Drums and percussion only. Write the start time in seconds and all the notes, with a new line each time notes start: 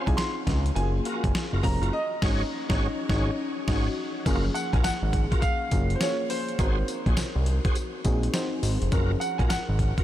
0.07 kick, closed hi-hat
0.18 snare, closed hi-hat
0.47 kick, snare, closed hi-hat
0.66 closed hi-hat
0.76 closed hi-hat
1.05 closed hi-hat
1.24 kick, closed hi-hat
1.35 snare, closed hi-hat
1.64 kick, open hi-hat
1.83 closed hi-hat
2.22 kick, snare, crash
2.70 kick, snare
3.09 kick, snare
3.68 kick, snare, crash
4.26 kick, closed hi-hat, crash, tambourine
4.55 closed hi-hat, tambourine
4.73 kick, closed hi-hat
4.84 snare, closed hi-hat, tambourine
5.13 kick, closed hi-hat
5.32 kick, closed hi-hat
5.42 kick, closed hi-hat, tambourine
5.71 kick, closed hi-hat, tambourine
5.90 closed hi-hat
6.01 snare, closed hi-hat, tambourine
6.30 open hi-hat, tambourine
6.48 closed hi-hat
6.59 kick, closed hi-hat, tambourine
6.88 closed hi-hat, tambourine
7.06 kick, closed hi-hat
7.17 snare, closed hi-hat, tambourine
7.46 closed hi-hat
7.65 kick, closed hi-hat
7.75 closed hi-hat, tambourine
8.05 kick, closed hi-hat, tambourine
8.23 closed hi-hat
8.34 snare, closed hi-hat, tambourine
8.63 open hi-hat, tambourine
8.82 closed hi-hat
8.92 kick, closed hi-hat, tambourine
9.21 closed hi-hat, tambourine
9.39 kick, closed hi-hat
9.50 snare, closed hi-hat, tambourine
9.79 kick, closed hi-hat
9.98 kick, closed hi-hat